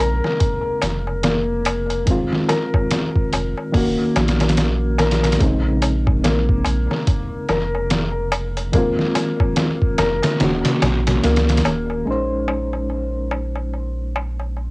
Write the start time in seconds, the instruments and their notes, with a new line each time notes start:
Already playing: reed electric piano C#3 G#3 C4 D#4, felt piano A#3
0.00 sub bass A#1, felt piano A#4
0.24 snare, darbuka tek
0.40 kick, closed hi-hat, darbuka tek
0.82 sub bass F1, snare, closed hi-hat, darbuka tek
1.07 darbuka tek
1.23 felt piano A#3, snare, closed hi-hat, darbuka tek
1.65 closed hi-hat, darbuka tek
1.90 closed hi-hat, darbuka tek
2.06 reed electric piano D#3 G#3 C4, kick, closed hi-hat, darbuka tek
2.11 reed electric piano F4
2.33 snare
2.49 felt piano A#4, snare, closed hi-hat, darbuka tek
2.74 kick, darbuka tek
2.91 snare, closed hi-hat, darbuka tek
3.15 kick
3.32 sub bass F1, closed hi-hat, darbuka tek
3.58 darbuka tek
3.72 sub bass D#1, reed electric piano D#3 A#3 C#4, felt piano A#3, kick, open hi-hat, darbuka tek
3.77 reed electric piano F#4
4.16 sub bass A#1, snare, closed hi-hat, darbuka tek
4.28 snare, closed hi-hat
4.40 snare, closed hi-hat, darbuka tek
4.49 snare, closed hi-hat
4.57 snare, closed hi-hat, darbuka tek
4.98 felt piano A#4, snare, closed hi-hat, darbuka tek
5.11 snare, closed hi-hat
5.23 snare, closed hi-hat, darbuka tek
5.32 snare, closed hi-hat
5.39 sub bass A#1, reed electric piano C#3 G#3 C4, kick, closed hi-hat, darbuka tek
5.44 reed electric piano D#4
5.82 closed hi-hat, darbuka tek
6.07 kick, darbuka tek
6.24 felt piano A#3, snare, closed hi-hat, darbuka tek
6.49 kick
6.64 sub bass A#1, closed hi-hat, darbuka tek
6.91 snare, darbuka tek
7.07 kick, closed hi-hat, darbuka tek
7.49 sub bass F1, felt piano A#4, snare, closed hi-hat, darbuka tek
7.75 darbuka tek
7.90 snare, closed hi-hat, darbuka tek
8.32 closed hi-hat, darbuka tek
8.57 closed hi-hat, darbuka tek
8.72 reed electric piano D#3 G#3 C4, felt piano A#3, kick, closed hi-hat, darbuka tek
8.77 reed electric piano F4
8.99 snare
9.15 snare, closed hi-hat, darbuka tek
9.40 kick, darbuka tek
9.56 snare, closed hi-hat, darbuka tek
9.82 kick
9.98 sub bass F1, felt piano A#4, snare, closed hi-hat, darbuka tek
10.23 snare, closed hi-hat, darbuka tek
10.39 sub bass D#1, reed electric piano D#3 A#3 C#4, snare, closed hi-hat, darbuka tek
10.44 reed electric piano F#4
10.65 snare, closed hi-hat
10.82 sub bass A#1, snare, closed hi-hat, darbuka tek
11.07 snare, closed hi-hat, darbuka tek
11.23 sub bass C#2, felt piano A#3, snare, closed hi-hat, darbuka tek
11.36 snare, closed hi-hat
11.49 snare, closed hi-hat
11.57 snare, closed hi-hat
11.65 sub bass D#1, closed hi-hat, darbuka tek
11.90 darbuka tek
12.05 sub bass A#1, reed electric piano G#3 C#4 D#4, darbuka tek
12.11 reed electric piano C5
12.48 darbuka tek
12.73 darbuka tek
12.90 darbuka tek
13.31 darbuka tek
13.56 darbuka tek
13.73 darbuka tek
14.16 darbuka tek
14.40 darbuka tek
14.57 darbuka tek